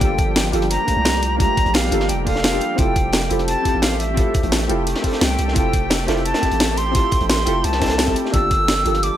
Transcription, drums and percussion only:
0.01 kick loud
0.01 closed hi-hat medium
0.18 kick loud
0.18 closed hi-hat medium
0.36 snare loud
0.36 closed hi-hat medium
0.53 closed hi-hat medium
0.62 snare soft
0.62 closed hi-hat soft
0.70 closed hi-hat medium
0.70 closed hi-hat loud
0.88 kick medium
0.88 closed hi-hat medium
1.05 snare loud
1.05 closed hi-hat medium
1.22 closed hi-hat medium
1.40 kick loud
1.40 closed hi-hat medium
1.57 kick loud
1.57 closed hi-hat medium
1.66 closed hi-hat soft
1.74 snare loud
1.74 closed hi-hat medium
1.83 snare soft
1.83 closed hi-hat soft
1.92 closed hi-hat medium
1.92 open hi-hat medium
2.00 snare soft
2.09 closed hi-hat medium
2.27 kick medium
2.27 closed hi-hat medium
2.27 open hi-hat medium
2.36 snare medium
2.44 snare loud
2.44 closed hi-hat medium
2.61 closed hi-hat medium
2.78 kick loud
2.78 closed hi-hat medium
2.96 kick loud
2.96 closed hi-hat medium
3.13 snare loud
3.13 closed hi-hat medium
3.30 closed hi-hat medium
3.39 snare soft
3.39 closed hi-hat soft
3.48 closed hi-hat medium
3.65 kick medium
3.65 closed hi-hat medium
3.82 snare loud
3.82 closed hi-hat medium
4.00 closed hi-hat medium
4.17 kick loud
4.17 closed hi-hat medium
4.34 kick loud
4.34 closed hi-hat medium
4.43 closed hi-hat soft
4.52 snare loud
4.52 closed hi-hat medium
4.52 closed hi-hat loud
4.70 open hi-hat medium
4.87 closed hi-hat loud
4.87 closed hi-hat medium
4.96 snare medium
5.04 kick medium
5.04 closed hi-hat medium
5.04 open hi-hat medium
5.12 snare soft
5.21 snare loud
5.21 closed hi-hat medium
5.39 closed hi-hat medium
5.48 snare soft
5.56 kick loud
5.56 closed hi-hat medium
5.73 kick loud
5.73 closed hi-hat medium
5.90 snare loud
5.90 closed hi-hat medium
5.90 closed hi-hat loud
6.08 snare loud
6.08 closed hi-hat medium
6.17 closed hi-hat soft
6.25 closed hi-hat medium
6.25 closed hi-hat loud
6.34 snare loud
6.34 closed hi-hat medium
6.43 kick medium
6.43 closed hi-hat medium
6.43 closed hi-hat soft
6.51 closed hi-hat medium
6.60 snare loud
6.60 closed hi-hat medium
6.60 closed hi-hat loud
6.77 closed hi-hat medium
6.95 kick loud
6.95 closed hi-hat loud
6.95 closed hi-hat medium
7.12 kick loud
7.12 closed hi-hat medium
7.20 closed hi-hat soft
7.29 snare loud
7.29 closed hi-hat medium
7.38 snare soft
7.38 closed hi-hat soft
7.46 closed hi-hat medium
7.46 open hi-hat medium
7.64 closed hi-hat medium
7.64 closed hi-hat loud
7.73 snare soft
7.73 snare medium
7.82 kick medium
7.82 snare medium
7.82 closed hi-hat medium
7.86 snare medium
7.86 closed hi-hat medium
7.90 snare loud
7.90 closed hi-hat medium
7.98 snare loud
7.98 closed hi-hat loud
7.98 closed hi-hat medium
8.08 kick medium
8.16 closed hi-hat medium
8.25 snare soft
8.34 kick loud
8.34 closed hi-hat loud
8.34 closed hi-hat medium
8.51 kick loud
8.51 closed hi-hat medium
8.68 snare loud
8.68 closed hi-hat loud
8.68 closed hi-hat medium
8.86 closed hi-hat medium
8.95 snare soft
8.95 closed hi-hat soft
9.03 closed hi-hat loud
9.03 closed hi-hat medium

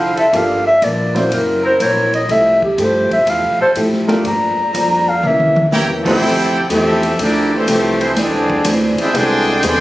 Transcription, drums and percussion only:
0.17 ride medium
0.33 kick soft
0.33 ride medium
0.82 kick soft
0.82 hi-hat pedal medium
0.82 ride medium
1.16 snare soft
1.16 ride medium
1.31 kick soft
1.31 ride medium
1.80 kick soft
1.80 hi-hat pedal medium
1.80 ride medium
2.14 ride medium
2.29 kick soft
2.29 ride medium
2.62 kick medium
2.78 kick soft
2.78 hi-hat pedal medium
2.78 ride medium
3.11 kick medium
3.11 ride medium
3.27 kick soft
3.27 ride medium
3.75 kick soft
3.75 hi-hat pedal medium
3.75 ride medium
3.93 snare soft
4.08 snare soft
4.08 ride medium
4.25 kick soft
4.25 ride medium
4.74 kick soft
4.74 hi-hat pedal medium
4.74 ride medium
5.23 mid tom medium
5.40 mid tom medium
5.56 mid tom loud
5.72 snare medium
5.72 hi-hat pedal medium
6.05 kick medium
6.05 crash medium
6.21 kick soft
6.70 kick soft
6.70 hi-hat pedal medium
6.70 ride medium
7.03 ride medium
7.19 kick soft
7.19 ride medium
7.68 kick soft
7.68 hi-hat pedal medium
7.68 ride medium
8.01 ride medium
8.16 kick soft
8.16 snare soft
8.16 ride medium
8.50 kick medium
8.64 kick soft
8.64 hi-hat pedal medium
8.64 ride medium
8.98 ride medium
9.14 kick soft
9.14 ride medium
9.63 kick soft
9.63 hi-hat pedal medium
9.63 ride medium

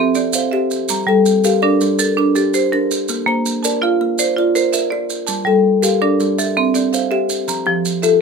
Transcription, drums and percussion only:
0.15 maracas medium
0.33 maracas medium
0.71 maracas medium
0.89 maracas medium
1.26 maracas medium
1.44 maracas medium
1.81 maracas medium
1.99 maracas medium
2.35 maracas medium
2.54 maracas medium
2.91 maracas medium
3.08 maracas medium
3.46 maracas medium
3.64 maracas medium
4.18 maracas medium
4.55 maracas medium
4.73 maracas medium
5.10 maracas medium
5.27 maracas medium
5.83 maracas medium
6.20 maracas soft
6.39 maracas medium
6.75 maracas medium
6.93 maracas medium
7.29 maracas medium
7.48 maracas medium
7.85 maracas medium
8.03 maracas medium

